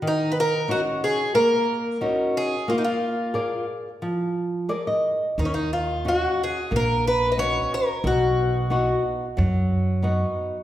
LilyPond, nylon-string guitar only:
\new Staff \with { instrumentName = "Nylon-string guitar" } { \time 4/4 \key ees \minor \tempo 4 = 90 << { r1 | r2. d''16 ees''8. | r1 | r1 | } \\ { ees4 <des' ees' ges'>4 bes4 <des' ees' ges'>4 | bes4 <aes' bes' d''>4 f4 <aes' bes' d''>4 | ees4 <des' ees' ges'>4 bes4 <des' ees' ges'>4 | b,4 <b dis' fis'>4 fis4 <b dis' fis'>4 | } >> }